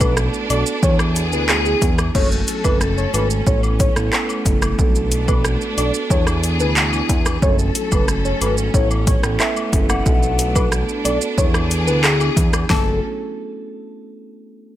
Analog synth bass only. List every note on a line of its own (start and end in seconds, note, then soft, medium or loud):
0.00 0.30 B1 loud
0.50 0.64 B1 medium
0.83 1.34 E2 loud
1.32 1.75 D2 medium
1.82 2.10 E2 loud
2.15 2.43 F#1 loud
2.65 3.07 F#1 loud
3.14 3.42 G#1 medium
3.47 3.89 A1 loud
3.96 4.10 A1 medium
4.46 4.74 F#1 medium
4.79 5.57 B1 loud
5.78 5.92 B1 medium
6.10 6.61 E2 loud
6.60 7.02 D2 loud
7.09 7.38 E2 loud
7.42 7.71 F#1 loud
7.92 8.34 F#1 medium
8.41 8.70 G#1 medium
8.74 9.17 A1 loud
9.24 9.38 A1 medium
9.73 10.01 F#1 medium
10.06 10.85 B1 loud
11.05 11.19 B1 medium
11.38 11.89 E2 loud
11.87 12.30 D2 loud
12.37 12.65 E2 loud
12.70 13.00 F#1 loud